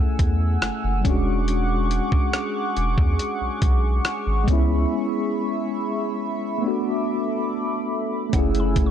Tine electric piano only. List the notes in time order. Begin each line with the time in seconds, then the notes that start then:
Already playing: A3 C#4 E4 G#4 A4
1.01 G3 C#4
1.07 G#3 D4 F#4
4.44 G#3 B3
4.50 C#4 E4
6.58 A3 B3
6.64 D4 F#4
8.29 A3 C#4
8.35 E4 G#4